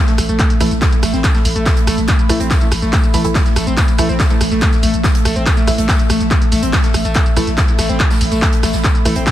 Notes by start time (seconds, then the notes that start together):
Already playing: A3 A4 E5 E6
0.08 A3, snare, closed hi-hat, shaker
0.18 A1, cross-stick, open hi-hat, tambourine, shaker
0.29 A1 A3, closed hi-hat, shaker
0.39 A3, kick, clap, closed hi-hat, tambourine, shaker
0.50 closed hi-hat, shaker
0.59 A1 E3 A3 E4 B5, cross-stick, open hi-hat, tambourine, shaker
0.70 A1, snare, closed hi-hat, shaker
0.82 kick, snare, clap, closed hi-hat, tambourine, shaker
0.92 closed hi-hat, shaker
1.03 A1 A3, cross-stick, snare, open hi-hat, tambourine, shaker
1.13 A1 C4, snare, closed hi-hat, shaker
1.24 kick, clap, closed hi-hat, tambourine, shaker
1.34 A3, snare, closed hi-hat, shaker
1.45 A1, open hi-hat, tambourine, shaker
1.56 A1 A3, closed hi-hat, shaker
1.66 A3, kick, snare, clap, closed hi-hat, tambourine, shaker
1.77 closed hi-hat, shaker
1.87 A1 A3, cross-stick, open hi-hat, tambourine, shaker
1.98 A1, snare, closed hi-hat, shaker
2.08 kick, clap, closed hi-hat, tambourine, shaker
2.19 closed hi-hat, shaker
2.29 A1 E3 A3 E4, cross-stick, snare, open hi-hat, tambourine, shaker
2.40 A1 C4, closed hi-hat, shaker
2.50 kick, snare, clap, closed hi-hat, tambourine, shaker
2.61 A3, closed hi-hat, shaker
2.72 A1, cross-stick, open hi-hat, tambourine, shaker
2.82 A1 A3, snare, closed hi-hat, shaker
2.93 kick, clap, closed hi-hat, tambourine, shaker
3.04 closed hi-hat, shaker
3.14 A1 E3 A3 E4, open hi-hat, tambourine, shaker
3.24 A1 E3 A3 E4, closed hi-hat, shaker
3.34 kick, snare, clap, closed hi-hat, tambourine, shaker
3.46 snare, closed hi-hat, shaker
3.56 A1 A3, cross-stick, open hi-hat, tambourine, shaker
3.67 A1 C4, closed hi-hat, shaker
3.77 kick, clap, closed hi-hat, tambourine, shaker
3.88 closed hi-hat, shaker
3.97 A1 E3 A3 E4 E6, cross-stick, open hi-hat, tambourine, shaker
4.09 A1 C4, snare, closed hi-hat, shaker
4.20 kick, snare, clap, closed hi-hat, tambourine, shaker
4.30 A3, closed hi-hat, shaker
4.41 A1, cross-stick, snare, open hi-hat, tambourine, shaker
4.51 A1 A3, snare, closed hi-hat, shaker
4.61 A3, kick, clap, closed hi-hat, tambourine, shaker
4.73 snare, closed hi-hat, shaker
4.83 A1 A3, open hi-hat, tambourine, shaker
4.94 A1, closed hi-hat, shaker
5.04 kick, snare, clap, closed hi-hat, tambourine, shaker
5.15 closed hi-hat, shaker
5.25 A1 A3, cross-stick, open hi-hat, tambourine, shaker
5.35 A1 C4, snare, closed hi-hat, shaker
5.46 kick, clap, closed hi-hat, tambourine, shaker
5.57 A3, closed hi-hat, shaker
5.67 A1 E3 A3 E4, cross-stick, snare, open hi-hat, tambourine, shaker
5.78 A1 A3, closed hi-hat, shaker
5.88 A3, kick, snare, clap, closed hi-hat, tambourine, shaker
5.99 closed hi-hat, shaker
6.10 A1 A3, cross-stick, open hi-hat, tambourine, shaker
6.20 A1, snare, closed hi-hat, shaker
6.31 kick, clap, closed hi-hat, tambourine, shaker
6.42 closed hi-hat, shaker
6.52 A1 A3, open hi-hat, tambourine, shaker
6.63 A1 C4, closed hi-hat, shaker
6.73 kick, snare, clap, closed hi-hat, tambourine, shaker
6.84 A3, snare, closed hi-hat, shaker
6.94 A1, cross-stick, open hi-hat, tambourine, shaker
7.05 A1 A3, closed hi-hat, shaker
7.14 A3, kick, clap, closed hi-hat, tambourine, shaker
7.26 closed hi-hat, shaker
7.34 A1 E3 A3 E4 B5, cross-stick, open hi-hat, tambourine, shaker
7.47 A1, snare, closed hi-hat, shaker
7.57 kick, snare, clap, closed hi-hat, tambourine, shaker
7.68 closed hi-hat, shaker
7.78 A1 A3, cross-stick, snare, open hi-hat, tambourine, shaker
7.89 A1 C4, snare, closed hi-hat, shaker
8.00 kick, clap, closed hi-hat, tambourine, shaker
8.11 A3, snare, closed hi-hat, tambourine, shaker
8.21 A1, snare, open hi-hat, shaker
8.32 A1 A3, closed hi-hat, tambourine, shaker
8.42 kick, snare, clap, closed hi-hat, tambourine, shaker
8.53 closed hi-hat, shaker
8.63 A1 A3, cross-stick, snare, open hi-hat, tambourine, shaker
8.73 A1, snare, closed hi-hat, tambourine, shaker
8.84 kick, clap, closed hi-hat, tambourine, shaker
8.95 closed hi-hat, shaker
9.05 A1 E3 A3 E4, cross-stick, snare, open hi-hat, tambourine, shaker
9.16 A1 C4, closed hi-hat, shaker
9.26 kick, snare, clap, closed hi-hat, tambourine, shaker